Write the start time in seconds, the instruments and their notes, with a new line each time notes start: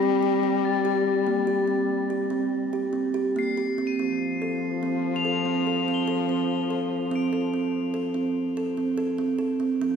Already playing: french horn G3
0.03 kalimba C4
0.23 kalimba G4
0.43 kalimba C4
0.65 crotales A6
0.85 kalimba G4
1.27 kalimba A#3
1.47 kalimba G4
1.68 kalimba C4
2.10 kalimba G4
2.30 kalimba C4
2.73 kalimba G4
2.93 kalimba C4
3.14 kalimba G4
3.36 kalimba A#3, crotales C7
3.57 kalimba G4
3.78 kalimba C4
3.87 crotales D#7
3.99 french horn F3, kalimba C4
4.42 kalimba A4
4.83 kalimba C4
5.16 crotales F7
5.25 kalimba A4
5.45 kalimba C4
5.67 kalimba A4
5.88 kalimba C4
5.94 crotales G7
6.08 kalimba A4
6.29 kalimba C4
6.70 kalimba A4
7.11 kalimba C4
7.15 crotales D7
7.33 kalimba A4
7.54 kalimba C4
7.94 kalimba A4
8.14 kalimba C4
8.57 kalimba A4
8.77 kalimba C4
8.98 kalimba A4
9.18 kalimba C4
9.39 kalimba A4
9.60 kalimba C4
9.81 french horn F3, kalimba C4